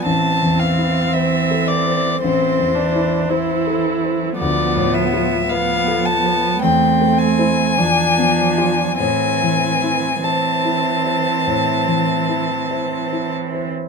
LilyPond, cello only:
\new Staff \with { instrumentName = "Cello" } { \clef bass \time 4/4 \key a \minor \tempo 4 = 53 e4 e4 e4 e4 | f4 f4 a4 f4 | e4 e2. | }